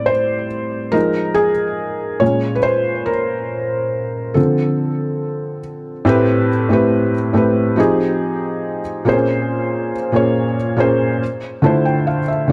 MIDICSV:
0, 0, Header, 1, 2, 480
1, 0, Start_track
1, 0, Tempo, 857143
1, 1478, Time_signature, 4, 2, 24, 8
1, 7012, End_track
2, 0, Start_track
2, 0, Title_t, "Felt piano"
2, 0, Program_c, 0, 0
2, 0, Control_c, 0, 64, 127
2, 0, Note_on_c, 0, 45, 59
2, 0, Note_on_c, 0, 55, 55
2, 0, Note_on_c, 0, 60, 65
2, 0, Note_on_c, 0, 74, 114
2, 33, Note_on_c, 0, 72, 99
2, 256, Note_off_c, 0, 45, 0
2, 258, Note_off_c, 0, 55, 0
2, 259, Note_off_c, 0, 60, 0
2, 513, Note_on_c, 0, 70, 103
2, 517, Note_on_c, 0, 53, 61
2, 521, Note_on_c, 0, 56, 54
2, 523, Note_on_c, 0, 63, 67
2, 526, Control_c, 0, 64, 0
2, 528, Note_off_c, 0, 74, 0
2, 530, Note_off_c, 0, 72, 0
2, 622, Control_c, 0, 64, 127
2, 739, Note_off_c, 0, 70, 0
2, 753, Note_on_c, 0, 68, 98
2, 837, Note_off_c, 0, 53, 0
2, 839, Note_off_c, 0, 56, 0
2, 840, Note_off_c, 0, 63, 0
2, 1231, Note_on_c, 0, 73, 89
2, 1236, Note_on_c, 0, 46, 60
2, 1239, Note_on_c, 0, 56, 52
2, 1242, Note_on_c, 0, 61, 65
2, 1247, Control_c, 0, 64, 0
2, 1250, Note_off_c, 0, 68, 0
2, 1331, Control_c, 0, 64, 127
2, 1430, Note_on_c, 0, 71, 76
2, 1442, Note_off_c, 0, 73, 0
2, 1471, Note_on_c, 0, 72, 98
2, 1474, Note_off_c, 0, 71, 0
2, 1712, Note_on_c, 0, 70, 93
2, 1722, Note_off_c, 0, 72, 0
2, 2415, Note_off_c, 0, 46, 0
2, 2416, Note_off_c, 0, 56, 0
2, 2418, Note_off_c, 0, 61, 0
2, 2432, Note_on_c, 0, 69, 81
2, 2437, Note_on_c, 0, 50, 58
2, 2440, Note_on_c, 0, 53, 54
2, 2444, Note_on_c, 0, 60, 67
2, 2445, Control_c, 0, 64, 0
2, 2457, Note_off_c, 0, 70, 0
2, 2552, Control_c, 0, 64, 127
2, 3133, Note_off_c, 0, 69, 0
2, 3375, Note_off_c, 0, 50, 0
2, 3377, Note_off_c, 0, 53, 0
2, 3379, Note_off_c, 0, 60, 0
2, 3387, Note_on_c, 0, 45, 109
2, 3393, Note_on_c, 0, 57, 98
2, 3399, Note_on_c, 0, 60, 101
2, 3404, Note_on_c, 0, 67, 96
2, 3405, Control_c, 0, 64, 0
2, 3410, Note_on_c, 0, 71, 111
2, 3488, Control_c, 0, 64, 127
2, 3625, Note_off_c, 0, 45, 0
2, 3628, Note_off_c, 0, 57, 0
2, 3631, Note_off_c, 0, 60, 0
2, 3634, Note_off_c, 0, 67, 0
2, 3636, Note_off_c, 0, 71, 0
2, 3747, Note_on_c, 0, 45, 82
2, 3752, Note_on_c, 0, 57, 71
2, 3757, Note_on_c, 0, 60, 70
2, 3763, Note_on_c, 0, 67, 74
2, 3769, Note_on_c, 0, 71, 90
2, 3985, Note_off_c, 0, 45, 0
2, 3987, Note_off_c, 0, 57, 0
2, 3990, Note_off_c, 0, 60, 0
2, 3993, Note_off_c, 0, 67, 0
2, 3996, Note_off_c, 0, 71, 0
2, 4107, Note_on_c, 0, 45, 85
2, 4111, Note_on_c, 0, 57, 79
2, 4117, Note_on_c, 0, 60, 78
2, 4122, Note_on_c, 0, 67, 78
2, 4128, Note_on_c, 0, 71, 94
2, 4342, Note_off_c, 0, 60, 0
2, 4345, Note_on_c, 0, 53, 88
2, 4351, Note_on_c, 0, 60, 82
2, 4353, Note_off_c, 0, 45, 0
2, 4354, Note_off_c, 0, 67, 0
2, 4355, Note_off_c, 0, 57, 0
2, 4356, Note_on_c, 0, 63, 88
2, 4362, Note_on_c, 0, 67, 85
2, 4363, Note_off_c, 0, 71, 0
2, 4365, Control_c, 0, 64, 0
2, 4367, Note_on_c, 0, 68, 99
2, 4470, Control_c, 0, 64, 127
2, 4928, Note_off_c, 0, 53, 0
2, 4931, Note_off_c, 0, 60, 0
2, 4933, Note_off_c, 0, 63, 0
2, 4936, Note_off_c, 0, 67, 0
2, 4939, Note_off_c, 0, 68, 0
2, 5067, Note_on_c, 0, 46, 87
2, 5072, Note_on_c, 0, 58, 83
2, 5077, Note_on_c, 0, 60, 63
2, 5083, Note_on_c, 0, 68, 80
2, 5086, Control_c, 0, 64, 0
2, 5089, Note_on_c, 0, 72, 97
2, 5114, Note_off_c, 0, 60, 0
2, 5114, Note_on_c, 0, 61, 81
2, 5171, Control_c, 0, 64, 127
2, 5553, Note_off_c, 0, 46, 0
2, 5555, Note_off_c, 0, 58, 0
2, 5561, Note_off_c, 0, 68, 0
2, 5564, Note_off_c, 0, 72, 0
2, 5576, Note_off_c, 0, 61, 0
2, 5667, Note_on_c, 0, 46, 84
2, 5673, Note_on_c, 0, 58, 73
2, 5678, Note_on_c, 0, 61, 72
2, 5684, Note_on_c, 0, 68, 70
2, 5690, Note_on_c, 0, 73, 89
2, 5905, Note_off_c, 0, 46, 0
2, 5908, Note_off_c, 0, 58, 0
2, 5911, Note_off_c, 0, 61, 0
2, 5913, Note_off_c, 0, 68, 0
2, 5916, Note_off_c, 0, 73, 0
2, 6028, Note_on_c, 0, 46, 88
2, 6033, Note_on_c, 0, 58, 77
2, 6039, Note_on_c, 0, 61, 86
2, 6044, Note_on_c, 0, 68, 83
2, 6049, Note_on_c, 0, 72, 98
2, 6273, Note_off_c, 0, 46, 0
2, 6276, Note_off_c, 0, 58, 0
2, 6279, Note_off_c, 0, 61, 0
2, 6281, Note_off_c, 0, 68, 0
2, 6284, Note_off_c, 0, 72, 0
2, 6287, Control_c, 0, 64, 0
2, 6376, Control_c, 0, 64, 127
2, 6507, Note_on_c, 0, 50, 89
2, 6513, Note_on_c, 0, 57, 80
2, 6518, Note_on_c, 0, 64, 81
2, 6518, Note_on_c, 0, 81, 69
2, 6523, Note_on_c, 0, 65, 77
2, 6529, Note_on_c, 0, 72, 93
2, 6630, Note_off_c, 0, 81, 0
2, 6638, Note_on_c, 0, 79, 67
2, 6750, Note_off_c, 0, 79, 0
2, 6758, Note_on_c, 0, 77, 69
2, 6823, Note_off_c, 0, 50, 0
2, 6825, Note_off_c, 0, 57, 0
2, 6828, Note_off_c, 0, 64, 0
2, 6831, Note_off_c, 0, 65, 0
2, 6834, Note_off_c, 0, 72, 0
2, 6870, Note_off_c, 0, 77, 0
2, 6877, Note_on_c, 0, 76, 66
2, 6987, Note_on_c, 0, 50, 76
2, 6989, Note_off_c, 0, 76, 0
2, 6993, Note_on_c, 0, 57, 67
2, 7012, Note_off_c, 0, 50, 0
2, 7012, Note_off_c, 0, 57, 0
2, 7012, End_track
0, 0, End_of_file